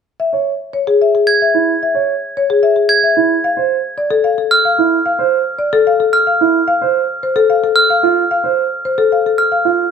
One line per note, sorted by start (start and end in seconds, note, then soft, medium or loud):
0.20 0.37 E5 soft
0.33 0.50 C#5 soft
0.73 0.91 C#5 soft
0.87 1.04 G#4 medium
1.02 1.18 E5 soft
1.15 1.32 G#4 soft
1.27 1.45 G#6 medium
1.42 1.59 E5 soft
1.54 1.72 E4 soft
1.83 1.99 E5 soft
1.95 2.12 C#5 soft
2.37 2.53 C#5 soft
2.50 2.67 G#4 medium
2.63 2.80 E5 medium
2.76 2.93 G#4 soft
2.89 3.07 G#6 medium
3.04 3.21 E5 soft
3.17 3.34 E4 soft
3.44 3.61 F5 medium
3.57 3.74 C5 medium
3.98 4.15 D5 soft
4.11 4.28 A4 medium
4.24 4.42 F5 soft
4.38 4.56 A4 soft
4.51 4.69 F6 medium
4.65 4.83 F5 medium
4.78 4.96 E4 soft
5.06 5.23 F5 medium
5.19 5.37 C5 medium
5.59 5.77 D5 medium
5.73 5.91 A4 medium
5.87 6.04 F5 medium
6.00 6.18 A4 medium
6.13 6.31 F6 medium
6.27 6.45 F5 soft
6.41 6.58 E4 medium
6.68 6.85 F5 medium
6.81 6.99 C5 medium
7.23 7.40 C5 medium
7.36 7.53 A4 medium
7.50 7.67 F5 medium
7.64 7.80 A4 medium
7.76 7.93 F6 medium
7.90 8.07 F5 medium
8.03 8.20 F4 medium
8.31 8.48 F5 medium
8.44 8.61 C5 soft
8.85 9.02 C5 medium
8.98 9.15 A4 medium
9.12 9.29 F5 soft
9.26 9.43 A4 soft
9.38 9.56 F6 medium
9.52 9.69 F5 soft
9.65 9.83 F4 soft